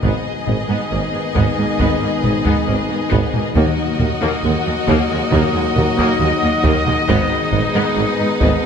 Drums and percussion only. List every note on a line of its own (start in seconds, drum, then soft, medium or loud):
0.03 taiko medium
0.47 taiko low-mid medium
1.35 taiko medium
1.80 taiko medium
2.24 taiko low-mid medium
2.45 taiko medium
3.11 taiko medium
3.33 taiko low-mid medium
3.55 taiko medium
3.99 taiko low-mid medium
4.88 taiko medium
5.32 taiko medium
5.76 taiko low-mid medium
5.98 taiko medium
6.64 taiko medium
6.86 taiko low-mid medium
7.08 taiko medium
7.52 taiko low-mid medium
8.40 taiko medium